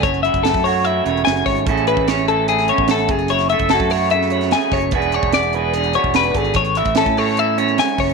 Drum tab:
HH |xxxxxxo-x-xxxxox|xxx-xxx-xxx-xxxx|xxxxxxo-x-xxxxox|xxx-xxx-xxx-xxxx|
SD |----oo------o---|----o----o--o---|-o--o----o-oo---|----o-------o---|
BD |o--o-o--------o-|o--o-------o--o-|---o-o--------o-|o--o-------o--o-|

HH |xxxxxxo-x-xxxxox|
SD |----o-------o---|
BD |o--o-o--------o-|